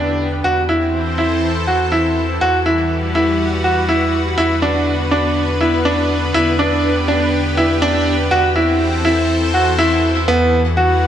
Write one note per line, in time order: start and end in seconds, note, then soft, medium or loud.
0.00 0.42 E2 medium
0.00 0.45 D3 medium
0.00 0.45 B3 medium
0.00 0.26 D4 medium
0.00 1.23 G4 medium
0.00 0.45 B4 medium
0.44 2.39 E2 medium
0.44 4.38 E3 medium
0.44 0.60 F#4 medium
0.60 2.41 C4 medium
0.69 1.00 E4 medium
0.78 2.41 C5 medium
0.84 3.20 A4 medium
1.18 1.49 E4 medium
1.67 1.83 F#4 medium
1.92 2.23 E4 medium
2.41 4.36 E2 medium
2.41 2.57 F#4 medium
2.59 4.38 G3 medium
2.59 8.32 B4 medium
2.66 2.97 E4 medium
2.78 6.35 F#4 medium
3.15 3.46 E4 medium
3.64 3.80 F#4 medium
3.89 4.20 E4 medium
4.38 6.32 E2 medium
4.38 8.32 D3 medium
4.38 4.53 E4 medium
4.55 8.32 B3 medium
4.62 4.93 D4 medium
5.11 5.42 D4 medium
5.61 5.76 E4 medium
5.85 6.16 D4 medium
6.34 8.29 E2 medium
6.34 6.50 E4 medium
6.59 6.90 D4 medium
6.59 8.93 G4 medium
7.08 7.39 D4 medium
7.57 7.73 E4 medium
7.82 8.13 D4 medium
8.31 10.26 E2 medium
8.31 11.07 E3 medium
8.31 8.47 F#4 loud
8.42 10.28 C4 medium
8.55 8.87 E4 medium
8.55 10.90 A4 medium
9.03 9.36 E4 medium
9.03 10.28 C5 medium
9.54 9.70 F#4 medium
9.79 10.09 E4 medium
10.28 11.07 E2 medium
10.28 10.59 B3 loud
10.42 11.07 F#4 medium
10.50 11.07 G3 medium
10.57 11.07 B4 medium
10.77 11.07 F#4 medium